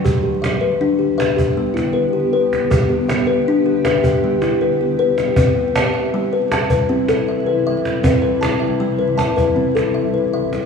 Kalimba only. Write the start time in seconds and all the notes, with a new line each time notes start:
0.05 G3 G4
0.23 G4
0.42 E5
0.61 B4
0.81 D4
0.99 G4
1.18 B4 E5
1.37 G4
1.57 G3
1.74 E4
1.93 B4
2.13 G4
2.33 B4
2.71 G3 G4
2.89 G4
3.09 E5
3.27 B4
3.48 D4
3.66 G4
3.85 B4 E5
4.03 G4
4.24 G3
4.42 E4
4.61 B4
4.81 G4
4.99 B4
5.37 C4 B4
5.75 A5
5.94 E5
6.14 G3
6.33 B4
6.52 E5 A5
6.70 B4
6.89 C4
7.09 A4
7.29 E5
7.47 B4
7.67 E5
8.03 C4 B4
8.22 B4
8.41 A5
8.60 E5
8.80 G3
8.99 B4
9.18 E5 A5
9.36 B4
9.56 C4
9.75 A4
9.94 E5
10.14 B4
10.34 E5